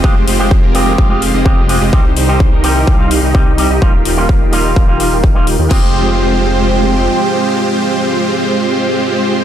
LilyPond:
<<
  \new Staff \with { instrumentName = "Supersaw synth" } { \time 4/4 \key f \minor \tempo 4 = 127 <aes c' f' g' c''>8 <aes c' f' g' c''>8. <aes c' f' g' bes'>8. <aes f' g' f''>8. <aes c' f' g' ees''>4 <aes c' f' g' ees''>16 | <ees' g' c''>8 <ees' g' c''>8. <ees' g' bes'>8. <ees' g'>8. <ees' g' ees''>4 <ees' g' ees''>16 | <ees' f' g'>8 <ees' f' g' bes' f''>8. <ees' f' g' bes' ees''>8. r8. <ees' f' g' bes' g''>4 <ees' f' g' bes' g''>16 | <aes c' f' g' c''>1~ |
<aes c' f' g' c''>1 | }
  \new Staff \with { instrumentName = "Clean electric guitar" } { \time 4/4 \key f \minor <aes c' f' g'>16 r8 <aes c' f' g'>16 r8 <aes c' f' g'>8. <aes c' f' g'>16 r8 <aes c' f' g'>16 r16 <aes c' f' g'>16 r16 | <c g c' ees' g'>16 r8 <c g c' ees' g'>16 r8 <c g c' ees' g'>8. <c g c' ees' f'>16 r8 <c g c' ees' g'>16 r16 <g c' ees' g'>16 r16 | <g bes ees' f'>16 r8 <g bes ees' f'>16 r8 <g bes ees' f'>8. <g bes ees' f'>16 <g bes ees' f'>16 r8 <g bes ees' f'>16 r8 | <aes c' f' g'>1~ |
<aes c' f' g'>1 | }
  \new Staff \with { instrumentName = "Analog synth pad" } { \time 4/4 \key f \minor << { g'1 | <ees g'>1~ | <ees g'>1 | <f aes c' g' c''>1~ |
<f aes c' g' c''>1 | } \\ { <c aes f'>1 | <c g ees'>1 | <bes f'>1 | r1 |
r1 | } >> }
  \new Staff \with { instrumentName = "Detuned saw bass" } { \clef bass \time 4/4 \key f \minor f,,8 f,,8. f,,8. f,,8. f,,4 f,,16 | c,8 c,8. c,8. c,8. c,4 c,16 | ees,,8 ees,,8. ees,,8. ees,,8. ees,,4 ees,16 | f,,2. r4 |
r1 | }
  \new DrumStaff \with { instrumentName = "Drums" } \drummode { \time 4/4 bd8 hho8 bd8 hho8 bd8 hho8 bd8 hho8 | bd8 hho8 bd8 hho8 bd8 hho8 bd8 hho8 | bd8 hho8 bd8 hho8 bd8 hho8 bd8 hho8 | <cymc bd>4 r4 r4 r4 |
r4 r4 r4 r4 | }
>>